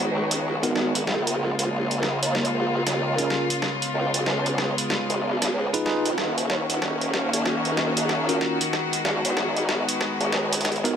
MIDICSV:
0, 0, Header, 1, 5, 480
1, 0, Start_track
1, 0, Key_signature, -6, "minor"
1, 0, Tempo, 638298
1, 807, Time_signature, 4, 2, 24, 8
1, 8246, End_track
2, 0, Start_track
2, 0, Title_t, "Tine electric piano"
2, 0, Program_c, 0, 4
2, 472, Note_on_c, 0, 66, 65
2, 473, Note_on_c, 0, 59, 72
2, 473, Note_on_c, 0, 63, 66
2, 473, Note_on_c, 0, 70, 79
2, 691, Note_off_c, 0, 66, 0
2, 692, Note_off_c, 0, 59, 0
2, 692, Note_off_c, 0, 63, 0
2, 692, Note_off_c, 0, 70, 0
2, 2393, Note_on_c, 0, 61, 72
2, 2393, Note_on_c, 0, 65, 68
2, 2393, Note_on_c, 0, 68, 64
2, 2393, Note_on_c, 0, 70, 81
2, 2612, Note_off_c, 0, 61, 0
2, 2612, Note_off_c, 0, 65, 0
2, 2612, Note_off_c, 0, 68, 0
2, 2612, Note_off_c, 0, 70, 0
2, 4312, Note_on_c, 0, 65, 74
2, 4313, Note_on_c, 0, 63, 81
2, 4313, Note_on_c, 0, 68, 74
2, 4313, Note_on_c, 0, 71, 88
2, 4392, Note_off_c, 0, 63, 0
2, 4392, Note_off_c, 0, 65, 0
2, 4392, Note_off_c, 0, 68, 0
2, 4392, Note_off_c, 0, 71, 0
2, 4404, Note_on_c, 0, 65, 79
2, 4404, Note_on_c, 0, 68, 78
2, 4404, Note_on_c, 0, 71, 95
2, 4405, Note_on_c, 0, 63, 86
2, 4568, Note_off_c, 0, 65, 0
2, 4568, Note_off_c, 0, 68, 0
2, 4569, Note_off_c, 0, 63, 0
2, 4569, Note_off_c, 0, 71, 0
2, 6232, Note_on_c, 0, 61, 76
2, 6233, Note_on_c, 0, 65, 67
2, 6233, Note_on_c, 0, 66, 70
2, 6233, Note_on_c, 0, 70, 80
2, 6452, Note_off_c, 0, 61, 0
2, 6452, Note_off_c, 0, 65, 0
2, 6452, Note_off_c, 0, 66, 0
2, 6452, Note_off_c, 0, 70, 0
2, 8153, Note_on_c, 0, 59, 74
2, 8153, Note_on_c, 0, 63, 68
2, 8153, Note_on_c, 0, 66, 68
2, 8153, Note_on_c, 0, 70, 85
2, 8246, Note_off_c, 0, 59, 0
2, 8246, Note_off_c, 0, 63, 0
2, 8246, Note_off_c, 0, 66, 0
2, 8246, Note_off_c, 0, 70, 0
2, 8246, End_track
3, 0, Start_track
3, 0, Title_t, "String section"
3, 0, Program_c, 1, 48
3, 0, Note_on_c, 1, 51, 72
3, 0, Note_on_c, 1, 56, 64
3, 0, Note_on_c, 1, 59, 66
3, 0, Note_on_c, 1, 66, 77
3, 776, Note_off_c, 1, 66, 0
3, 786, Note_off_c, 1, 51, 0
3, 786, Note_off_c, 1, 59, 0
3, 807, Note_on_c, 1, 65, 81
3, 808, Note_on_c, 1, 49, 73
3, 808, Note_on_c, 1, 58, 68
3, 2695, Note_off_c, 1, 56, 0
3, 2708, Note_off_c, 1, 58, 0
3, 2723, Note_on_c, 1, 56, 66
3, 2725, Note_on_c, 1, 59, 67
3, 4617, Note_off_c, 1, 49, 0
3, 4617, Note_off_c, 1, 65, 0
3, 4626, Note_off_c, 1, 56, 0
3, 4627, Note_off_c, 1, 59, 0
3, 4645, Note_on_c, 1, 51, 77
3, 4645, Note_on_c, 1, 66, 78
3, 4646, Note_on_c, 1, 58, 66
3, 4647, Note_on_c, 1, 61, 68
3, 6547, Note_off_c, 1, 58, 0
3, 6548, Note_off_c, 1, 61, 0
3, 6564, Note_on_c, 1, 56, 70
3, 6564, Note_on_c, 1, 59, 69
3, 8246, Note_off_c, 1, 51, 0
3, 8246, Note_off_c, 1, 56, 0
3, 8246, Note_off_c, 1, 59, 0
3, 8246, Note_off_c, 1, 66, 0
3, 8246, End_track
4, 0, Start_track
4, 0, Title_t, "Wobble bass"
4, 0, Program_c, 2, 39
4, 84, Note_on_c, 2, 37, 94
4, 551, Note_off_c, 2, 37, 0
4, 563, Note_on_c, 2, 32, 92
4, 791, Note_off_c, 2, 32, 0
4, 802, Note_on_c, 2, 34, 96
4, 1030, Note_off_c, 2, 34, 0
4, 1041, Note_on_c, 2, 34, 96
4, 1169, Note_off_c, 2, 34, 0
4, 1193, Note_on_c, 2, 34, 94
4, 1271, Note_off_c, 2, 34, 0
4, 1284, Note_on_c, 2, 34, 97
4, 1651, Note_off_c, 2, 34, 0
4, 1672, Note_on_c, 2, 39, 102
4, 1890, Note_off_c, 2, 39, 0
4, 1914, Note_on_c, 2, 34, 93
4, 2131, Note_off_c, 2, 34, 0
4, 2154, Note_on_c, 2, 39, 94
4, 2471, Note_off_c, 2, 39, 0
4, 2964, Note_on_c, 2, 37, 99
4, 3090, Note_off_c, 2, 37, 0
4, 3113, Note_on_c, 2, 35, 94
4, 3191, Note_off_c, 2, 35, 0
4, 3205, Note_on_c, 2, 37, 99
4, 3571, Note_off_c, 2, 37, 0
4, 3831, Note_on_c, 2, 32, 94
4, 4150, Note_off_c, 2, 32, 0
4, 4164, Note_on_c, 2, 37, 99
4, 4290, Note_off_c, 2, 37, 0
4, 4553, Note_on_c, 2, 41, 96
4, 4631, Note_off_c, 2, 41, 0
4, 4643, Note_on_c, 2, 27, 95
4, 4871, Note_off_c, 2, 27, 0
4, 4883, Note_on_c, 2, 39, 98
4, 5010, Note_off_c, 2, 39, 0
4, 5031, Note_on_c, 2, 27, 93
4, 5110, Note_off_c, 2, 27, 0
4, 5124, Note_on_c, 2, 27, 97
4, 5490, Note_off_c, 2, 27, 0
4, 5512, Note_on_c, 2, 32, 98
4, 5730, Note_off_c, 2, 32, 0
4, 5752, Note_on_c, 2, 27, 95
4, 5970, Note_off_c, 2, 27, 0
4, 5993, Note_on_c, 2, 32, 96
4, 6311, Note_off_c, 2, 32, 0
4, 6803, Note_on_c, 2, 32, 99
4, 6930, Note_off_c, 2, 32, 0
4, 6952, Note_on_c, 2, 30, 93
4, 7031, Note_off_c, 2, 30, 0
4, 7044, Note_on_c, 2, 32, 99
4, 7411, Note_off_c, 2, 32, 0
4, 7674, Note_on_c, 2, 32, 94
4, 7752, Note_off_c, 2, 32, 0
4, 7765, Note_on_c, 2, 37, 101
4, 8231, Note_off_c, 2, 37, 0
4, 8246, End_track
5, 0, Start_track
5, 0, Title_t, "Drums"
5, 234, Note_on_c, 9, 42, 66
5, 309, Note_off_c, 9, 42, 0
5, 476, Note_on_c, 9, 42, 55
5, 551, Note_off_c, 9, 42, 0
5, 568, Note_on_c, 9, 38, 54
5, 643, Note_off_c, 9, 38, 0
5, 716, Note_on_c, 9, 42, 63
5, 791, Note_off_c, 9, 42, 0
5, 807, Note_on_c, 9, 38, 54
5, 882, Note_off_c, 9, 38, 0
5, 956, Note_on_c, 9, 42, 54
5, 1031, Note_off_c, 9, 42, 0
5, 1195, Note_on_c, 9, 42, 66
5, 1271, Note_off_c, 9, 42, 0
5, 1436, Note_on_c, 9, 42, 36
5, 1512, Note_off_c, 9, 42, 0
5, 1525, Note_on_c, 9, 38, 57
5, 1600, Note_off_c, 9, 38, 0
5, 1674, Note_on_c, 9, 42, 67
5, 1749, Note_off_c, 9, 42, 0
5, 1766, Note_on_c, 9, 38, 57
5, 1841, Note_on_c, 9, 42, 36
5, 1842, Note_off_c, 9, 38, 0
5, 1916, Note_off_c, 9, 42, 0
5, 2155, Note_on_c, 9, 38, 53
5, 2155, Note_on_c, 9, 42, 65
5, 2230, Note_off_c, 9, 38, 0
5, 2230, Note_off_c, 9, 42, 0
5, 2395, Note_on_c, 9, 42, 51
5, 2470, Note_off_c, 9, 42, 0
5, 2484, Note_on_c, 9, 38, 63
5, 2559, Note_off_c, 9, 38, 0
5, 2633, Note_on_c, 9, 42, 63
5, 2709, Note_off_c, 9, 42, 0
5, 2724, Note_on_c, 9, 38, 63
5, 2799, Note_off_c, 9, 38, 0
5, 2874, Note_on_c, 9, 42, 51
5, 2949, Note_off_c, 9, 42, 0
5, 3114, Note_on_c, 9, 42, 62
5, 3189, Note_off_c, 9, 42, 0
5, 3206, Note_on_c, 9, 38, 58
5, 3281, Note_off_c, 9, 38, 0
5, 3354, Note_on_c, 9, 42, 35
5, 3429, Note_off_c, 9, 42, 0
5, 3445, Note_on_c, 9, 38, 63
5, 3520, Note_off_c, 9, 38, 0
5, 3596, Note_on_c, 9, 42, 63
5, 3671, Note_off_c, 9, 42, 0
5, 3685, Note_on_c, 9, 38, 67
5, 3760, Note_off_c, 9, 38, 0
5, 3834, Note_on_c, 9, 42, 37
5, 3910, Note_off_c, 9, 42, 0
5, 4075, Note_on_c, 9, 38, 58
5, 4075, Note_on_c, 9, 42, 64
5, 4150, Note_off_c, 9, 38, 0
5, 4150, Note_off_c, 9, 42, 0
5, 4315, Note_on_c, 9, 42, 52
5, 4391, Note_off_c, 9, 42, 0
5, 4406, Note_on_c, 9, 38, 72
5, 4481, Note_off_c, 9, 38, 0
5, 4553, Note_on_c, 9, 42, 65
5, 4629, Note_off_c, 9, 42, 0
5, 4645, Note_on_c, 9, 38, 68
5, 4721, Note_off_c, 9, 38, 0
5, 4796, Note_on_c, 9, 42, 49
5, 4871, Note_off_c, 9, 42, 0
5, 4886, Note_on_c, 9, 38, 72
5, 4961, Note_off_c, 9, 38, 0
5, 5036, Note_on_c, 9, 42, 61
5, 5111, Note_off_c, 9, 42, 0
5, 5128, Note_on_c, 9, 38, 71
5, 5203, Note_off_c, 9, 38, 0
5, 5275, Note_on_c, 9, 42, 34
5, 5350, Note_off_c, 9, 42, 0
5, 5366, Note_on_c, 9, 38, 68
5, 5441, Note_off_c, 9, 38, 0
5, 5515, Note_on_c, 9, 42, 62
5, 5591, Note_off_c, 9, 42, 0
5, 5606, Note_on_c, 9, 38, 76
5, 5682, Note_off_c, 9, 38, 0
5, 5754, Note_on_c, 9, 42, 34
5, 5829, Note_off_c, 9, 42, 0
5, 5845, Note_on_c, 9, 38, 75
5, 5920, Note_off_c, 9, 38, 0
5, 5992, Note_on_c, 9, 42, 61
5, 6068, Note_off_c, 9, 42, 0
5, 6085, Note_on_c, 9, 38, 79
5, 6160, Note_off_c, 9, 38, 0
5, 6233, Note_on_c, 9, 42, 50
5, 6309, Note_off_c, 9, 42, 0
5, 6325, Note_on_c, 9, 38, 76
5, 6400, Note_off_c, 9, 38, 0
5, 6474, Note_on_c, 9, 42, 63
5, 6549, Note_off_c, 9, 42, 0
5, 6566, Note_on_c, 9, 38, 80
5, 6641, Note_off_c, 9, 38, 0
5, 6715, Note_on_c, 9, 42, 50
5, 6791, Note_off_c, 9, 42, 0
5, 6805, Note_on_c, 9, 38, 84
5, 6880, Note_off_c, 9, 38, 0
5, 6955, Note_on_c, 9, 42, 62
5, 7030, Note_off_c, 9, 42, 0
5, 7044, Note_on_c, 9, 38, 83
5, 7120, Note_off_c, 9, 38, 0
5, 7193, Note_on_c, 9, 42, 35
5, 7268, Note_off_c, 9, 42, 0
5, 7285, Note_on_c, 9, 38, 78
5, 7360, Note_off_c, 9, 38, 0
5, 7434, Note_on_c, 9, 42, 63
5, 7509, Note_off_c, 9, 42, 0
5, 7525, Note_on_c, 9, 38, 81
5, 7600, Note_off_c, 9, 38, 0
5, 7675, Note_on_c, 9, 42, 34
5, 7750, Note_off_c, 9, 42, 0
5, 7764, Note_on_c, 9, 38, 84
5, 7839, Note_off_c, 9, 38, 0
5, 7915, Note_on_c, 9, 42, 61
5, 7927, Note_off_c, 9, 42, 0
5, 7927, Note_on_c, 9, 42, 49
5, 7976, Note_off_c, 9, 42, 0
5, 7976, Note_on_c, 9, 42, 39
5, 8008, Note_off_c, 9, 42, 0
5, 8008, Note_on_c, 9, 38, 88
5, 8008, Note_on_c, 9, 42, 33
5, 8060, Note_off_c, 9, 42, 0
5, 8060, Note_on_c, 9, 42, 27
5, 8083, Note_off_c, 9, 38, 0
5, 8090, Note_off_c, 9, 42, 0
5, 8090, Note_on_c, 9, 42, 22
5, 8159, Note_off_c, 9, 42, 0
5, 8159, Note_on_c, 9, 42, 51
5, 8234, Note_off_c, 9, 42, 0
5, 8246, End_track
0, 0, End_of_file